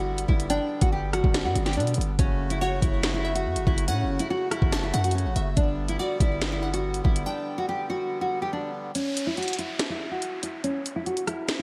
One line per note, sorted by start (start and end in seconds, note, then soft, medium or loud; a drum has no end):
0.00 0.25 G1 loud
0.00 2.16 D3 medium
0.00 2.16 G3 medium
0.00 2.16 B3 medium
0.00 0.27 F#4 medium
0.18 closed hi-hat medium
0.28 0.59 G1 loud
0.28 0.45 E4 medium
0.28 kick medium
0.40 closed hi-hat medium
0.50 0.80 D4 loud
0.50 1.30 G5 loud
0.50 closed hi-hat medium
0.81 1.22 G1 loud
0.81 0.90 F#4 medium
0.81 kick loud
0.81 closed hi-hat medium
0.92 1.09 G4 medium
1.13 1.43 F#4 medium
1.13 cross-stick loud
1.13 closed hi-hat medium
1.24 1.46 G1 loud
1.24 kick loud
1.34 snare loud
1.34 closed hi-hat medium
1.45 1.55 G2 loud
1.45 1.62 F#4 medium
1.56 1.78 G1 loud
1.56 closed hi-hat medium
1.66 1.74 G4 medium
1.66 snare medium
1.66 closed hi-hat soft
1.73 1.97 B2 loud
1.73 1.94 D4 medium
1.73 closed hi-hat medium
1.80 closed hi-hat medium
1.87 closed hi-hat medium
1.94 2.18 G1 loud
1.94 closed hi-hat medium
2.01 closed hi-hat medium
2.19 2.80 F#1 loud
2.19 5.54 C#3 medium
2.19 5.54 A3 medium
2.19 2.49 C#4 loud
2.19 5.54 F#4 medium
2.19 kick loud
2.19 closed hi-hat medium
2.50 2.59 E4 medium
2.50 closed hi-hat medium
2.61 2.78 F#4 medium
2.61 3.21 C#5 loud
2.82 3.47 F#1 loud
2.82 3.12 E4 medium
2.82 kick loud
2.82 closed hi-hat medium
3.03 snare loud
3.03 closed hi-hat medium
3.14 3.31 E4 medium
3.25 3.45 E5 medium
3.35 3.65 F#4 medium
3.35 closed hi-hat medium
3.46 3.58 F#2 loud
3.56 3.66 F#1 loud
3.56 closed hi-hat medium
3.67 3.89 F#1 loud
3.67 3.84 E4 medium
3.67 kick medium
3.78 closed hi-hat medium
3.88 4.05 A2 loud
3.88 4.18 C#4 loud
3.88 4.69 F#5 loud
3.88 closed hi-hat medium
4.04 4.19 F#1 loud
4.19 4.28 E4 medium
4.19 closed hi-hat medium
4.30 4.47 F#4 medium
4.51 4.81 E4 medium
4.51 cross-stick loud
4.51 closed hi-hat medium
4.62 4.92 F#1 loud
4.62 kick loud
4.72 4.93 A5 medium
4.72 snare loud
4.72 closed hi-hat medium
4.83 5.00 E4 medium
4.94 5.27 F#2 loud
4.94 5.33 F#5 medium
4.94 closed hi-hat medium
5.04 5.13 F#4 medium
5.04 closed hi-hat medium
5.11 5.32 C#4 medium
5.11 closed hi-hat medium
5.18 closed hi-hat soft
5.25 5.35 A1 loud
5.36 5.56 F#1 loud
5.36 5.56 E5 medium
5.36 closed hi-hat medium
5.57 5.98 G1 loud
5.57 8.92 D3 medium
5.57 8.92 G3 medium
5.57 8.92 B3 medium
5.57 5.87 D4 loud
5.57 kick loud
5.57 closed hi-hat medium
5.88 5.97 E4 medium
5.88 closed hi-hat medium
5.99 6.16 F#4 medium
5.99 6.59 D5 loud
6.20 7.01 G1 loud
6.20 6.50 E4 medium
6.20 kick loud
6.20 closed hi-hat medium
6.41 snare loud
6.41 closed hi-hat medium
6.52 6.69 E4 medium
6.63 6.83 F#5 medium
6.73 7.03 F#4 medium
6.73 closed hi-hat medium
6.94 closed hi-hat medium
7.04 7.25 G1 loud
7.04 7.21 E4 medium
7.04 kick medium
7.16 closed hi-hat medium
7.26 7.56 D4 loud
7.26 8.07 G5 medium
7.58 7.66 F#4 medium
7.69 7.85 G4 medium
7.90 8.19 F#4 medium
8.21 8.38 F#4 medium
8.42 8.50 G4 medium
8.53 8.70 D4 medium
8.95 9.25 C#4 loud
8.95 closed hi-hat medium
8.95 downlifter medium
9.17 closed hi-hat medium
9.27 9.35 E4 medium
9.37 9.54 F#4 medium
9.37 closed hi-hat soft
9.43 closed hi-hat medium
9.48 closed hi-hat medium
9.53 closed hi-hat medium
9.59 9.88 E4 medium
9.59 closed hi-hat medium
9.79 snare loud
9.79 closed hi-hat medium
9.90 10.07 E4 medium
10.11 10.41 F#4 medium
10.22 closed hi-hat medium
10.43 10.60 E4 medium
10.43 closed hi-hat medium
10.64 10.94 C#4 medium
10.64 closed hi-hat medium
10.86 closed hi-hat medium
10.96 11.04 E4 medium
11.06 11.23 F#4 medium
11.06 closed hi-hat soft
11.17 closed hi-hat medium
11.27 11.57 E4 medium
11.27 cross-stick loud
11.27 closed hi-hat medium
11.48 snare loud
11.48 closed hi-hat medium